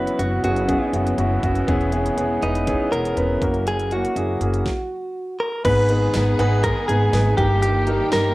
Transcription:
Already playing: string section C#3 E3 F#3 B3, grand piano B3 C#4 E4 F#4, clean electric guitar B4
0.07 closed hi-hat
0.19 upright bass F#1, grand piano B3 C#4 E4 F#4, clean electric guitar F#4, closed hi-hat
0.43 upright bass F#1, grand piano B3 C#4 E4 G#4, clean electric guitar F#4, closed hi-hat
0.56 closed hi-hat
0.68 grand piano B3 C#4 E4 G#4, kick, closed hi-hat
0.93 upright bass F#1, grand piano B3 C#4 E4 F#4, closed hi-hat
1.07 closed hi-hat
1.18 upright bass F#1, grand piano B3 C#4 E4 F#4, closed hi-hat
1.43 upright bass F#1, grand piano B3 C#4 E4 F#4, kick, closed hi-hat
1.55 closed hi-hat
1.67 upright bass E1, grand piano E3 B3 C#4 E4 G#4, string section G#3, kick, closed hi-hat
1.81 closed hi-hat
1.92 grand piano B3 C#4 E4 G#4, closed hi-hat
2.06 closed hi-hat
2.17 upright bass E1, grand piano B3 C#4 E4 G#4, closed hi-hat
2.41 upright bass E1, grand piano B3 C#4 E4 B4, clean electric guitar D#4, closed hi-hat
2.55 closed hi-hat
2.67 grand piano B3 C#4 E4 G#4, kick, closed hi-hat
2.91 upright bass E1, grand piano B3 C#4 E4 G#4, clean electric guitar A#4, closed hi-hat
3.05 closed hi-hat
3.16 upright bass E1, grand piano B3 C#4 E4 B4, closed hi-hat
3.41 upright bass F#1, string section F#3 A#3, grand piano A#3 C#4 E4 F#4, kick, closed hi-hat
3.54 closed hi-hat
3.67 clean electric guitar G#4, closed hi-hat
3.79 closed hi-hat
3.91 grand piano A#3 C#4 E4 F#4, clean electric guitar F#4, closed hi-hat
4.05 closed hi-hat
4.16 upright bass F#1, grand piano A#3 C#4 E4 G#4, closed hi-hat
4.40 upright bass F#1, grand piano A#3 C#4 E4 G#4, closed hi-hat
4.54 closed hi-hat
4.66 kick, snare
5.40 clean electric guitar A#4
5.64 upright bass G#1, grand piano G#2 B3 D#4 G#4 B4, string section D#3 G#3 B3 G#4, clean electric guitar B4, kick, closed hi-hat, crash
5.89 grand piano B3 D#4 G#4 B4, closed hi-hat
6.14 upright bass G#1, grand piano B3 D#4 G#4 B4, snare, closed hi-hat
6.39 upright bass G#1, grand piano B3 D#4 G#4 B4, closed hi-hat
6.63 grand piano B3 D#4 G#4 B4, clean electric guitar A#4, kick, closed hi-hat
6.88 upright bass G#1, grand piano B3 D#4 G#4 B4, clean electric guitar G#4, closed hi-hat
7.13 upright bass G#1, grand piano B3 D#4 G#4 B4, snare, closed hi-hat
7.37 upright bass G1, grand piano G2 A#3 D#4 G4 A#4, string section G3 A#3 G4, clean electric guitar G4, kick, closed hi-hat
7.62 clean electric guitar G4, closed hi-hat
7.87 grand piano A#3 D#4 G4 A#4, closed hi-hat
8.12 upright bass G1, grand piano A#3 D#4 G4 A#4, clean electric guitar A#4, snare, closed hi-hat

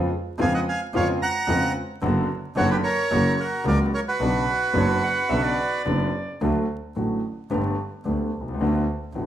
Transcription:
0.39 double bass F2, grand piano F2 C#3 F3 G#3 B3 F4, bandoneon F5 G#5
0.54 bandoneon D#5 F#5
0.69 bandoneon F5 G#5
0.93 double bass F2, grand piano F2 C#3 F3 G#3 B3 F4, bandoneon C#5 F5
1.22 bandoneon F#5 A#5
1.47 double bass F2, grand piano F2 C#3 F3 G#3 B3 F4
2.02 double bass F#1, grand piano F#2 D3 F#3 B3 F#4
2.56 double bass F#1, grand piano F#2 D3 F#3 B3 F#4, bandoneon F#4 C#5
2.70 bandoneon G4 B4
2.83 bandoneon A#4 C#5
3.11 double bass F#1, grand piano F#2 C#3 F#3 A#3 F#4
3.40 bandoneon F#4 A#4
3.64 grand piano C#2 C#3 F#3 A#3 F#4, double bass C#2, bandoneon A#4 D5
3.94 bandoneon A#4 C#5
4.08 bandoneon F#4 B4
4.20 double bass B1, grand piano B1 B2 C#3 F#3 B3 D4
4.73 grand piano F#1 F#2 C#3 F#3 B3 D4, double bass F#1, clarinet C#5
5.03 clarinet F#5
5.29 double bass B1, grand piano B1 B2 C#3 F#3 B3 D4, clarinet E5
5.44 clarinet D5
5.85 double bass F#1, grand piano F#1 F#2 C#3 F#3 B3 D4
6.41 grand piano D2 D3 F#3 A3 F#4, double bass D2
6.96 double bass A1, grand piano A1 A2 D3 F#3 A3 F#4
7.50 double bass G1, grand piano G1 G2 D3 A3 B3 G4
8.05 double bass D2, grand piano D2 D3 A3 B3 G4
8.32 double bass C2
8.41 grand piano B1
8.48 grand piano C2
8.54 grand piano C#2
8.59 double bass D2, grand piano D2 D3 A3 B3 F#4
9.13 double bass A1, grand piano A1 A2 D3 A3 B3 F#4

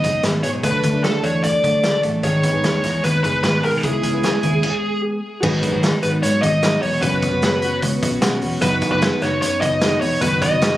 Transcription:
Already playing: clean electric guitar G#2 B3 D#4, lead electric guitar D#5
0.03 fingered electric bass F#1, steel-string acoustic guitar F#3 B3 D#4 G#4, kick, closed hi-hat
0.23 fingered electric bass G#1, clean electric guitar B3, snare, closed hi-hat
0.43 fingered electric bass B1, steel-string acoustic guitar G#2 D#3 F#3 B3 D#4 G#4, lead electric guitar C#5, closed hi-hat
0.62 fingered electric bass D2, steel-string acoustic guitar D3 F#3 A3 D4 A4, lead electric guitar B4, kick, closed hi-hat
0.83 fingered electric bass D2, clean electric guitar A3, kick, closed hi-hat
0.92 steel-string acoustic guitar D3 F#3 A3 D4 A4
1.03 clean electric guitar F#3, lead electric guitar A4, snare, closed hi-hat
1.23 fingered electric bass E2, steel-string acoustic guitar F#3 A3 D4 A4, lead electric guitar C#5, closed hi-hat
1.43 clean electric guitar A3, lead electric guitar D5, kick, closed hi-hat
1.62 fingered electric bass D2, steel-string acoustic guitar F#3 A3 D4 A4, kick, closed hi-hat
1.83 fingered electric bass D2, clean electric guitar A3, snare, closed hi-hat
2.03 fingered electric bass A1, steel-string acoustic guitar D3 F#3 A3 D4 A4, kick, closed hi-hat
2.23 fingered electric bass G#1, steel-string acoustic guitar G#2 D#3 G#3 B3 D#4 G#4, lead electric guitar C#5, kick, closed hi-hat
2.43 clean electric guitar B3, kick, closed hi-hat
2.53 fingered electric bass G#1, steel-string acoustic guitar G#2 D#3 G#3 B3 D#4 G#4
2.63 fingered electric bass D#2, clean electric guitar G#3, snare, closed hi-hat
2.83 fingered electric bass E2, steel-string acoustic guitar G#3 B3 D#4 G#4, kick, snare, closed hi-hat
3.04 fingered electric bass D#2, clean electric guitar B3, lead electric guitar B4, kick, closed hi-hat
3.22 fingered electric bass F#1, steel-string acoustic guitar G#3 B3 D#4 G#4, lead electric guitar B4, kick, closed hi-hat
3.43 fingered electric bass G#1, clean electric guitar B3, lead electric guitar B4, snare, closed hi-hat
3.63 fingered electric bass B1, steel-string acoustic guitar G#2 D#3 G#3 B3 D#4 G#4, lead electric guitar A#4, open hi-hat
3.82 fingered electric bass C#2, steel-string acoustic guitar C#3 G#3 B3 E4 G#4, lead electric guitar G#4, kick, closed hi-hat
4.03 fingered electric bass C#2, clean electric guitar B3, kick, closed hi-hat
4.13 steel-string acoustic guitar C#3 G#3 B3 E4 G#4
4.23 clean electric guitar G#3, snare, closed hi-hat
4.42 fingered electric bass D#2, steel-string acoustic guitar G#3 B3 E4 G#4, kick, closed hi-hat
4.63 kick, crash
5.41 fingered electric bass G#1, steel-string acoustic guitar G#2 D#3 F#3 B3 D#4 G#4, synth keys F#4 G#4 B4, kick, crash
5.63 clean electric guitar F#3, kick, closed hi-hat
5.72 fingered electric bass G#1, steel-string acoustic guitar F#3 B3 D#4 G#4
5.83 clean electric guitar D#4, snare, closed hi-hat
6.02 fingered electric bass G#1, steel-string acoustic guitar F#3 B3 D#4 G#4, lead electric guitar B4, closed hi-hat
6.23 fingered electric bass G#2, clean electric guitar F#3, lead electric guitar C#5, closed hi-hat
6.41 fingered electric bass G#1, steel-string acoustic guitar F#3 B3 D#4 G#4, lead electric guitar D#5, kick, closed hi-hat
6.62 steel-string acoustic guitar F#3 B3 D#4 G#4, snare, closed hi-hat
6.82 fingered electric bass E1, clean electric guitar F#3, lead electric guitar C#5, open hi-hat
7.01 fingered electric bass F#1, steel-string acoustic guitar F#2 C#3 F#3 B3 C#4 F#4, synth keys C#4 F#4 B4, lead electric guitar B4, kick, closed hi-hat
7.22 clean electric guitar B3, kick, closed hi-hat
7.32 fingered electric bass F#1, steel-string acoustic guitar F#3 B3 C#4 F#4
7.42 clean electric guitar F#4, snare, closed hi-hat
7.62 steel-string acoustic guitar F#3 B3 C#4 F#4, closed hi-hat
7.82 fingered electric bass C#2, clean electric guitar B3, kick, closed hi-hat
8.02 fingered electric bass B1, steel-string acoustic guitar F#3 B3 C#4 F#4, kick, closed hi-hat
8.21 fingered electric bass B1, steel-string acoustic guitar F#3 B3 C#4 F#4, synth keys F#5, snare, closed hi-hat
8.42 fingered electric bass E1, clean electric guitar B3, open hi-hat
8.61 fingered electric bass F#1, steel-string acoustic guitar F#2 D#3 F#3 B3 D#4 F#4, synth keys D#4 F#4 B4, lead electric guitar B4, kick, closed hi-hat
8.82 clean electric guitar B3, kick, closed hi-hat
8.91 fingered electric bass F#1, steel-string acoustic guitar F#3 B3 D#4 F#4, lead electric guitar B4
9.02 clean electric guitar F#4, snare, closed hi-hat
9.21 fingered electric bass F#1, steel-string acoustic guitar F#3 B3 D#4 F#4, lead electric guitar C#5, snare, closed hi-hat
9.42 fingered electric bass F#2, clean electric guitar B3, lead electric guitar C#5, closed hi-hat
9.61 fingered electric bass F#1, steel-string acoustic guitar F#3 B3 D#4 F#4, lead electric guitar D#5, kick, closed hi-hat
9.81 steel-string acoustic guitar F#3 B3 D#4 F#4, snare, closed hi-hat
10.01 fingered electric bass E1, clean electric guitar B3, lead electric guitar C#5, open hi-hat
10.21 fingered electric bass F#1, steel-string acoustic guitar F#2 D#3 F#3 B3 D#4 F#4, lead electric guitar B4, kick, closed hi-hat
10.42 clean electric guitar B3, lead electric guitar D#5, kick, closed hi-hat
10.51 fingered electric bass F#1, steel-string acoustic guitar F#3 B3 D#4 F#4
10.62 clean electric guitar F#4, snare, closed hi-hat

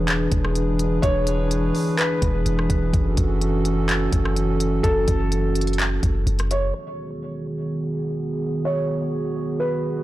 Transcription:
Already playing: 808-style bass E1, analog synth pad E3 D4 G#4 B4
0.08 clap, closed hi-hat
0.32 808-style bass E1, kick, closed hi-hat
0.45 cross-stick
0.55 closed hi-hat
0.79 closed hi-hat
1.02 808-style bass E1, felt piano C#5, kick, closed hi-hat
1.27 closed hi-hat
1.51 closed hi-hat
1.75 open hi-hat
1.98 felt piano B4, clap, closed hi-hat
2.22 808-style bass E1, kick, closed hi-hat
2.46 808-style bass E1, closed hi-hat
2.59 cross-stick
2.70 808-style bass E1, kick, closed hi-hat
2.94 808-style bass F#1, analog synth pad C#4 F#4 A4, kick, closed hi-hat
3.17 808-style bass F#1, kick, closed hi-hat
3.41 closed hi-hat
3.65 closed hi-hat
3.89 clap, closed hi-hat
4.13 808-style bass F#1, kick, closed hi-hat
4.25 cross-stick
4.36 closed hi-hat
4.60 closed hi-hat
4.83 808-style bass F#1, felt piano A4, kick, closed hi-hat
5.08 808-style bass F#1, kick, closed hi-hat
5.32 closed hi-hat
5.55 closed hi-hat
5.61 closed hi-hat
5.67 closed hi-hat
5.73 closed hi-hat
5.79 clap, closed hi-hat
6.03 808-style bass F#1, kick, closed hi-hat
6.27 808-style bass F#1, closed hi-hat
6.39 cross-stick, closed hi-hat
6.51 felt piano C#5, closed hi-hat
6.75 analog synth pad D#3 B3 F#4 G#4
8.65 felt piano C#5
9.60 felt piano B4

